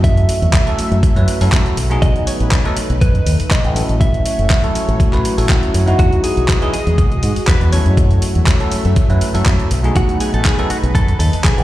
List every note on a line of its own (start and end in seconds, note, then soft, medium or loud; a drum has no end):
0.00 0.23 F#2 loud
0.00 0.63 F#3 medium
0.00 0.63 A3 medium
0.00 0.64 C#4 medium
0.00 0.64 E4 medium
0.00 1.74 F#4 medium
0.00 0.64 A4 medium
0.00 0.99 E5 loud
0.00 kick loud
0.04 1.76 A3 medium
0.04 1.76 E5 medium
0.04 closed hi-hat medium
0.17 closed hi-hat soft
0.29 open hi-hat loud
0.42 0.50 E2 medium
0.42 closed hi-hat soft
0.53 kick loud
0.53 clap loud
0.53 closed hi-hat medium
0.66 1.13 F#3 medium
0.66 1.13 A3 medium
0.66 1.13 C#4 medium
0.66 1.13 E4 medium
0.66 1.14 A4 medium
0.66 closed hi-hat soft
0.78 muted fingered electric bass stroke soft
0.78 open hi-hat loud
0.91 1.00 F#2 loud
0.91 closed hi-hat soft
1.03 kick loud
1.03 closed hi-hat medium
1.16 1.24 F#2 medium
1.16 1.38 F#3 medium
1.16 1.38 A3 medium
1.16 1.38 C#4 medium
1.16 1.38 E4 medium
1.16 1.38 B4 medium
1.16 closed hi-hat soft
1.28 open hi-hat loud
1.41 1.49 F#2 medium
1.41 1.76 F#3 medium
1.41 1.76 A3 medium
1.41 1.76 C#4 medium
1.41 1.76 E4 medium
1.41 1.76 A4 loud
1.41 open hi-hat medium
1.52 1.62 F#2 medium
1.52 kick loud
1.52 clap loud
1.52 closed hi-hat medium
1.66 closed hi-hat soft
1.77 1.95 B1 medium
1.77 5.95 A3 medium
1.77 3.74 D#4 medium
1.77 3.74 B4 medium
1.77 open hi-hat loud
1.90 2.62 F#3 medium
1.90 2.62 A3 medium
1.90 2.62 B3 medium
1.90 2.62 D#4 medium
1.90 2.63 G#4 loud
1.90 closed hi-hat soft
2.02 2.12 B1 loud
2.02 2.27 D#5 loud
2.02 kick loud
2.02 closed hi-hat medium
2.16 closed hi-hat soft
2.27 3.04 C#5 medium
2.27 open hi-hat loud
2.40 2.48 A1 medium
2.40 closed hi-hat soft
2.51 kick loud
2.51 clap loud
2.51 closed hi-hat medium
2.65 2.76 F#3 loud
2.65 2.76 A3 medium
2.65 2.76 B3 medium
2.65 2.76 D#4 medium
2.65 2.76 A4 loud
2.65 closed hi-hat soft
2.77 muted fingered electric bass stroke soft
2.77 open hi-hat loud
2.90 2.98 B1 loud
2.90 closed hi-hat soft
3.01 3.19 F#2 medium
3.01 3.53 B4 medium
3.01 kick loud
3.01 closed hi-hat medium
3.15 closed hi-hat soft
3.26 3.36 D#2 loud
3.26 open hi-hat loud
3.39 muted fingered electric bass stroke soft
3.39 open hi-hat medium
3.51 3.60 B1 medium
3.51 4.00 D#5 loud
3.51 kick loud
3.51 clap loud
3.51 closed hi-hat medium
3.64 3.81 A1 medium
3.64 closed hi-hat soft
3.75 4.60 F#3 medium
3.75 4.60 A3 medium
3.75 4.60 C#4 medium
3.75 4.61 E4 medium
3.75 9.67 F#4 medium
3.75 4.61 A4 medium
3.75 5.97 C#5 medium
3.75 open hi-hat loud
3.89 4.20 A1 loud
3.89 closed hi-hat soft
4.01 4.96 E5 loud
4.01 kick loud
4.01 closed hi-hat medium
4.14 closed hi-hat soft
4.26 open hi-hat loud
4.39 4.47 F#1 medium
4.39 closed hi-hat soft
4.50 kick loud
4.50 clap loud
4.50 closed hi-hat medium
4.63 5.10 F#3 medium
4.63 5.10 A3 medium
4.63 5.10 C#4 medium
4.63 5.10 E4 medium
4.63 5.10 A4 medium
4.63 closed hi-hat soft
4.75 muted fingered electric bass stroke soft
4.75 open hi-hat loud
4.88 4.96 A1 loud
4.88 closed hi-hat soft
5.00 kick loud
5.00 closed hi-hat medium
5.12 5.21 A1 medium
5.12 5.34 F#3 medium
5.12 5.35 A3 medium
5.12 5.35 C#4 medium
5.12 5.35 E4 medium
5.12 5.35 B4 loud
5.12 clap soft
5.12 closed hi-hat soft
5.25 open hi-hat loud
5.37 5.46 A1 medium
5.37 5.84 F#3 medium
5.37 5.84 A3 medium
5.37 5.84 C#4 medium
5.37 5.84 E4 medium
5.37 5.85 A4 loud
5.37 open hi-hat medium
5.49 5.59 A1 medium
5.49 kick loud
5.49 clap loud
5.49 closed hi-hat medium
5.63 closed hi-hat soft
5.74 5.92 F#2 medium
5.74 open hi-hat loud
5.86 6.58 F#3 medium
5.86 6.58 B3 medium
5.86 6.59 D#4 medium
5.86 6.59 E4 medium
5.86 6.59 F#4 loud
5.86 closed hi-hat soft
5.99 6.08 E2 medium
5.99 7.96 G#3 medium
5.99 6.23 F#4 medium
5.99 7.96 D#5 medium
5.99 kick loud
5.99 closed hi-hat medium
6.13 closed hi-hat soft
6.24 6.72 G#4 medium
6.24 open hi-hat loud
6.37 6.45 B1 medium
6.37 closed hi-hat soft
6.48 kick loud
6.48 clap loud
6.48 closed hi-hat medium
6.61 6.73 F#3 medium
6.61 6.73 B3 medium
6.61 6.73 D#4 medium
6.61 6.73 E4 medium
6.61 6.73 G#4 loud
6.61 closed hi-hat soft
6.73 7.50 G#4 medium
6.73 muted fingered electric bass stroke soft
6.73 open hi-hat loud
6.87 6.95 E2 loud
6.87 closed hi-hat soft
6.98 7.16 B1 medium
6.98 kick loud
6.98 closed hi-hat medium
7.12 closed hi-hat soft
7.23 7.32 G#2 loud
7.23 open hi-hat loud
7.36 muted fingered electric bass stroke soft
7.36 open hi-hat medium
7.47 7.57 E2 medium
7.47 7.72 B4 loud
7.47 kick loud
7.47 clap loud
7.47 closed hi-hat medium
7.61 7.78 E2 medium
7.61 closed hi-hat soft
7.72 8.57 F#3 medium
7.72 8.57 A3 medium
7.72 8.57 C#4 medium
7.72 8.57 E4 medium
7.72 8.58 A4 medium
7.72 9.17 C#5 loud
7.72 open hi-hat loud
7.86 8.17 F#2 loud
7.86 closed hi-hat soft
7.97 11.64 A3 medium
7.97 9.69 E5 medium
7.97 kick loud
7.97 closed hi-hat medium
8.11 closed hi-hat soft
8.22 open hi-hat loud
8.35 8.44 E2 medium
8.35 closed hi-hat soft
8.47 kick loud
8.47 clap loud
8.47 closed hi-hat medium
8.59 9.06 F#3 medium
8.59 9.06 A3 medium
8.59 9.07 C#4 medium
8.59 9.07 E4 medium
8.59 9.07 A4 medium
8.59 closed hi-hat soft
8.72 muted fingered electric bass stroke soft
8.72 open hi-hat loud
8.85 8.93 F#2 loud
8.85 closed hi-hat soft
8.96 kick loud
8.96 closed hi-hat medium
9.09 9.18 F#2 medium
9.09 9.31 F#3 medium
9.09 9.31 A3 medium
9.09 9.32 C#4 medium
9.09 9.32 E4 medium
9.09 9.32 B4 loud
9.09 closed hi-hat soft
9.21 open hi-hat loud
9.34 9.43 F#2 medium
9.34 9.69 F#3 medium
9.34 9.69 A3 medium
9.34 9.70 C#4 medium
9.34 9.70 E4 medium
9.34 9.70 A4 loud
9.34 open hi-hat medium
9.46 9.56 F#2 medium
9.46 kick loud
9.46 clap loud
9.46 closed hi-hat medium
9.60 closed hi-hat soft
9.71 9.89 B1 medium
9.71 11.64 D#4 medium
9.71 11.64 B4 medium
9.71 open hi-hat loud
9.83 10.55 F#3 medium
9.83 10.55 A3 medium
9.83 10.55 B3 medium
9.83 10.56 D#4 medium
9.83 10.56 G#4 loud
9.83 closed hi-hat soft
9.96 10.05 B1 medium
9.96 10.20 F#4 loud
9.96 kick loud
9.96 closed hi-hat medium
10.09 closed hi-hat soft
10.20 10.33 G#4 loud
10.20 open hi-hat loud
10.34 10.42 A1 medium
10.34 10.45 A4 loud
10.34 closed hi-hat soft
10.45 10.70 G#4 loud
10.45 kick medium
10.45 clap loud
10.45 closed hi-hat medium
10.58 10.69 F#3 loud
10.58 10.69 A3 medium
10.58 10.70 B3 medium
10.58 10.70 D#4 medium
10.58 10.70 A4 loud
10.58 closed hi-hat soft
10.70 10.77 F#4 medium
10.70 muted fingered electric bass stroke soft
10.70 open hi-hat loud
10.83 10.91 B1 loud
10.83 closed hi-hat soft
10.95 11.13 F#2 medium
10.95 11.18 A4 loud
10.95 kick loud
10.95 closed hi-hat medium
11.08 closed hi-hat soft
11.19 11.29 D#2 loud
11.19 11.44 A4 loud
11.19 open hi-hat loud
11.33 muted fingered electric bass stroke soft
11.33 open hi-hat medium
11.44 11.54 B1 medium
11.44 11.64 G#4 loud
11.44 kick loud
11.44 clap loud
11.44 closed hi-hat medium
11.58 11.64 A1 loud
11.58 closed hi-hat soft